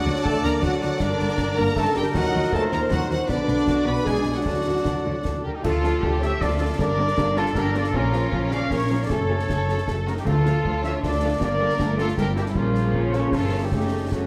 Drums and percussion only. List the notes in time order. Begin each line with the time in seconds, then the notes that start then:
0.16 snare
0.25 concert bass drum
0.44 snare
0.63 concert bass drum, snare
0.82 snare
1.00 concert bass drum, snare, crash
1.19 snare
1.29 snare
1.38 concert bass drum, snare
1.66 snare
1.76 concert bass drum, snare
2.15 concert bass drum, snare
2.44 snare
2.52 concert bass drum
2.72 snare
2.91 concert bass drum, snare
3.10 snare
3.29 concert bass drum, snare
3.48 snare
3.58 snare
3.67 concert bass drum, snare
3.97 snare
4.06 concert bass drum, snare
4.46 concert bass drum, snare
4.85 concert bass drum, snare
5.25 concert bass drum, snare
5.64 concert bass drum, crash
5.84 snare
6.03 concert bass drum
6.22 snare
6.41 concert bass drum, snare
6.79 concert bass drum, snare
7.08 snare
7.18 concert bass drum, snare
7.36 snare
7.46 snare
7.55 concert bass drum, snare
7.74 snare
7.84 snare
7.94 concert bass drum
8.13 snare
8.32 concert bass drum
8.51 snare
8.71 concert bass drum, snare
9.10 concert bass drum, snare
9.39 snare
9.50 concert bass drum, snare
9.69 snare
9.78 snare
9.88 concert bass drum, snare
10.07 snare
10.17 snare
10.27 concert bass drum, crash
10.46 snare
10.65 concert bass drum
10.84 snare
11.03 concert bass drum, snare
11.41 concert bass drum, snare
11.70 snare
11.79 concert bass drum, snare
11.99 snare
12.08 snare
12.18 concert bass drum, snare
12.36 snare
12.46 snare
12.55 concert bass drum
12.75 snare
12.94 concert bass drum
13.13 snare
13.32 concert bass drum, snare
13.72 concert bass drum, snare
14.12 concert bass drum, snare